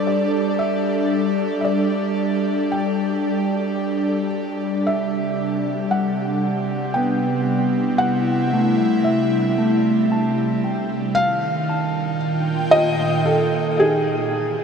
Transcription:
Already playing: G3 D4 A4 C5 D5
0.07 D5
0.59 E5
1.61 D5 E5
2.72 G5
4.83 C3 E5
5.91 G3 F#5
6.94 B3 G5
7.70 E4
7.98 F#5
8.53 A3
9.04 E5
9.58 A3
10.12 A5
10.64 G5
11.15 D#3 F5
11.69 A5
12.04 A#2 G5
12.13 F4
12.71 D#5 G5
13.26 A4
13.79 D#4 G#4 G5
14.34 E3

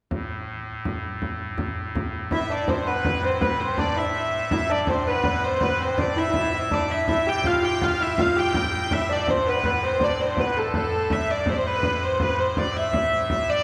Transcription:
0.11 A2, frame drum
0.66 frame drum
0.85 frame drum
1.22 frame drum
1.58 frame drum
1.77 frame drum
1.95 frame drum
2.31 A2 E4 E5, frame drum
2.50 D4 D5
2.68 C4 C5, frame drum
2.86 B3 B4
3.05 frame drum
3.23 C4 C5, frame drum
3.41 B3 B4, frame drum
3.60 C4 C5
3.78 D4 D5, frame drum
3.96 E4 E5
4.51 E4 E5, frame drum
4.70 D4 D5
4.87 C4 C5, frame drum
4.99 C5
5.07 B3 B4
5.24 frame drum
5.43 C5, frame drum
5.61 B3 B4, frame drum
5.80 C4 C5
5.98 D4 D5, frame drum
6.16 E4 E5, frame drum
6.29 E4
6.34 frame drum
6.41 E4
6.53 E4, frame drum
6.71 A2 D4 D5, frame drum
6.90 E4 E5
7.08 E4 E5, frame drum
7.27 G4 G5
7.44 F4 F5, frame drum
7.62 G4 G5, frame drum
7.82 F4 F5, frame drum
8.00 E4 E5
8.18 F4 F5, frame drum
8.36 G4 G5
8.54 frame drum
8.73 frame drum
8.91 E4 E5, frame drum
9.09 D4 D5
9.27 C4 C5, frame drum
9.47 B3 B4
9.64 B3, frame drum
9.82 C4 C5, frame drum
10.00 D4 D5, frame drum
10.20 C4 C5
10.37 B3 B4, frame drum
10.56 A3 A4, frame drum
10.74 frame drum
10.93 frame drum
11.10 A2 E5, frame drum
11.31 D5
11.46 C5, frame drum
11.53 D5
11.57 C5
11.67 B4
11.83 frame drum
12.01 C5, frame drum
12.20 B4, frame drum
12.40 C5
12.57 D5, frame drum
12.76 E5
12.93 frame drum
13.12 frame drum
13.30 E5, frame drum
13.49 D5

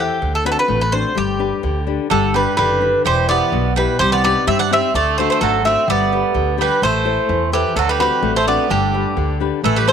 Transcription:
Already playing: E3
0.00 E4 G4 A4 C5
0.22 D2 D3
0.35 A4
0.45 C4 D4 F#4 B4
0.52 A4
0.59 B4
0.68 A1 A3
0.81 B4
0.92 C4 D4 F#4 C5
1.15 G1 G3 G4
1.39 D4 G4 B4
1.63 D2 D3
1.87 D4 G4 B4
2.10 G1 D3 G3 A4
2.34 G3 D4 G4 B4
2.57 F#1 D3 G3 B4
2.81 D4 G4 B4
3.05 E1 E3 G3 C5
3.29 B3 E4 G4 B4 D5
3.52 B1 B2
3.76 G3 E4 G4 B4
3.99 C2 C3 G3 C5
4.12 B3 D5
4.24 B3 C4 D#4 G4 D5
4.47 G2 G3 C4 E5
4.59 D4 F#5
4.71 C4 D#4 G4 E5
4.94 D2 D3 A3 D5
5.18 A3 D4 F#4 C5
5.30 A3 C5
5.41 G#1 F#3 A3 A4
5.64 A3 C4 D4 F#4 E5
5.88 G1 G3 B3 D5
6.12 G4 A4 B4
6.34 D2 D3
6.57 G3 G4 A4 B4
6.62 B4
6.82 A1 A3 C5
7.05 E4 A4 C5
7.29 E2 E3
7.52 E3 E4 G4 A4 C5
7.76 D2 D3 F#3 A4
7.89 G3 B4
7.99 G3 C4 D4 F#4 B4
8.22 A1 A3
8.36 A3 C5
8.47 B3 C4 D4 F#4 D5
8.70 G1 D3 G3 G4
8.93 D4 G4 B4
9.16 D2 D3
9.40 D4 G4 B4
9.63 A1 E3 A3 A4
9.76 G3 B4
9.88 A3 E4 A4 C5

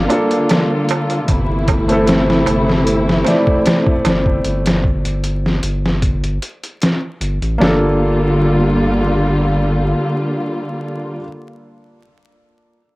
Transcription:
Already playing: D3 G3 A#3 F4
0.08 A#3 D4 F4, closed hi-hat, darbuka tek
0.12 A4
0.31 closed hi-hat, darbuka tek
0.49 snare, closed hi-hat, darbuka tek
0.70 darbuka tek
0.89 closed hi-hat, darbuka tek
1.10 closed hi-hat, darbuka tek
1.28 G1 C3 E3 A3 E4, kick, closed hi-hat, darbuka tek
1.68 kick, closed hi-hat, darbuka tek
1.88 A3 C4 E4, closed hi-hat, darbuka tek
1.92 A4
2.07 snare, closed hi-hat, darbuka tek
2.28 snare, darbuka tek
2.46 G1, closed hi-hat, darbuka tek
2.67 snare, darbuka tek
2.85 closed hi-hat, darbuka tek
3.09 snare
3.24 A3 C4 E4 D5, snare, closed hi-hat, darbuka tek
3.46 kick, darbuka tek
3.66 snare, closed hi-hat, darbuka tek
3.86 kick, darbuka tek
4.05 G1, snare, closed hi-hat, darbuka tek
4.26 kick, darbuka tek
4.44 G1, closed hi-hat
4.66 snare, closed hi-hat
4.84 kick
5.05 closed hi-hat
5.24 closed hi-hat
5.46 snare
5.63 G1, closed hi-hat
5.86 snare
6.02 kick, closed hi-hat
6.24 closed hi-hat
6.42 closed hi-hat
6.63 closed hi-hat
6.82 snare, closed hi-hat
7.21 G1, closed hi-hat
7.42 A1, closed hi-hat
7.58 G1 D3 G3 A#3 D4 F4, snare
7.64 A4

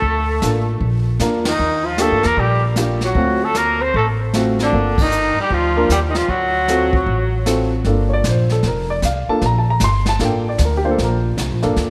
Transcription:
Already playing: A3 A4
0.02 D2, brush sweep, kick
0.42 A1 A#3 D4 F4 A4, snare, hi-hat pedal
0.80 A#1, brush sweep, kick
1.19 E2 A#3 D4 F4 A#4, snare, hi-hat pedal
1.45 D#3 D#4, snare, ride
1.59 D#2, brush sweep
1.84 F3 F4
1.98 A3 A#3 D4 F4 G4, snare, hi-hat pedal
2.02 A4
2.12 G2
2.23 E2 A#3 A#4, snare
2.36 A#1 G3 G4, brush sweep, kick
2.76 A#3 D4 F4 G4, snare, hi-hat pedal
3.01 F#3, snare
3.06 F#4
3.15 D2 A3 C4 F4 F#4, brush sweep, kick
3.43 A3 A4
3.55 A#3 A#4, snare, hi-hat pedal
3.82 C4 C5
3.94 A1 A3 A4, brush sweep, kick
4.33 A3 C4 F4 F#4, snare, hi-hat pedal
4.59 D3, snare
4.64 D4
4.72 G1 A#3 D4 F4 A4, brush sweep, kick
4.98 D#3, kick, ride
5.02 D#4
5.12 hi-hat pedal
5.37 G3, muted upright bass stroke
5.42 G4
5.50 D2 F3 F4, brush sweep, kick
5.77 A#3 D4 F4 A#4
5.89 D#2 G3 G4, snare, hi-hat pedal
6.09 D#3 D#4
6.15 F3 F4, snare
6.28 D2 F#3 F#4, brush sweep, kick
6.68 C4 F4 F#4 A4, snare, hi-hat pedal
6.93 kick
7.06 A1, brush sweep, kick
7.46 C4 F4 F#4 A4, snare, hi-hat pedal
7.84 G1 A#3 D4 F4 A4, brush sweep, kick, snare
8.09 C#5
8.13 D5
8.24 A#1, kick, snare, hi-hat pedal
8.29 C5
8.49 A4, snare
8.63 F1, brush sweep, kick, snare
8.67 A#4
8.90 D5
9.02 C2 F5, kick, snare, hi-hat pedal
9.28 A#3 D4 F4 A4 A5, muted upright bass stroke
9.41 A#1, brush sweep, kick, snare
9.46 A#5
9.58 A5
9.70 A#5
9.80 G1, kick, snare, hi-hat pedal
9.84 C6
10.06 A5, snare
10.19 A1 A#3 D4 F4 A4, brush sweep, kick, snare
10.25 G5
10.49 D5
10.58 D2, kick, snare, hi-hat pedal
10.65 A#4
10.77 G4
10.84 A#3 D4 F4 C5
10.91 A4
10.98 A#1 A4, brush sweep, kick, snare
11.04 A#4
11.37 C2, kick, snare, hi-hat pedal
11.51 A#1
11.62 G1 A#3 D4 F4 A4, snare
11.76 D2, brush sweep, kick, snare

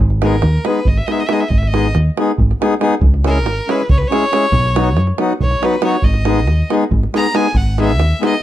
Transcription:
0.00 G#1
0.10 davul high
0.22 G#3 B3 D#4 G#4 A#4, davul high
0.32 davul high
0.42 D#2, davul high
0.65 G#3 B3 D#4 G#4 B4, davul high
0.85 G#1 D#5, davul low
0.97 E5, davul high
1.06 G#3 B3 D#4 D#5, davul high
1.11 G#4 E5
1.18 D#5, davul high
1.27 G#3 B3 E5, davul high
1.31 D#4 G#4 D#5
1.40 E5, davul high
1.48 G#1 D#5, davul low
1.58 E5
1.63 davul high
1.67 D#5
1.73 G#3 B3 D#4 G#4, davul high
1.84 davul high
1.95 D#2, davul high
2.17 G#3 B3 D#4 G#4, davul high
2.28 davul high
2.38 G#1, davul low
2.51 davul high
2.61 G#3 B3 D#4 G#4, davul high
2.72 davul high
2.81 G#3 B3 D#4 G#4, davul high
2.93 davul high
3.01 C#2, davul low
3.14 davul high
3.24 G#3 C#4 E4 G#4 A#4, davul high
3.35 davul high
3.45 G#1, davul high
3.68 G#3 C#4 E4 G#4 B4, davul high
3.80 davul high
3.89 C#2 C#5, davul low
3.98 B4
4.02 davul high
4.07 G#3 C#4 C#5
4.12 E4 G#4, davul high
4.23 davul high
4.32 G#3 C#4 E4 G#4, davul high
4.43 davul high
4.52 B1, davul low
4.66 davul high
4.75 F#3 B3 D#4 F#4, davul high
4.86 davul high
4.97 F#2, davul high
5.07 davul high
5.18 F#3 B3 D#4 F#4, davul high
5.30 davul high
5.41 B1 C#5, davul low
5.51 davul high
5.62 F#3 B3 D#4 F#4 B4, davul high
5.73 davul high
5.82 F#3 B3 D#4 F#4 C#5, davul high
5.92 davul high
6.02 G#1 D#5, davul low
6.14 davul high
6.25 G#3 B3 D#4 G#4, davul high
6.36 davul high
6.47 D#2, davul high
6.70 G#3 B3 D#4 G#4, davul high
6.82 davul high
6.91 G#1, davul low
7.03 davul high
7.14 G#3 B3 D#4 G#4 A#5, davul high
7.24 davul high
7.34 G#3 B3 D#4 G#4 G#5, davul high
7.45 davul high
7.54 G#1 F#5, davul low
7.78 G#3 B3 D#4 G#4 E5, davul high
7.89 davul high
7.99 D#2, davul high
8.20 G#3 B3 D#4 G#4, davul high
8.26 D#5
8.33 davul high

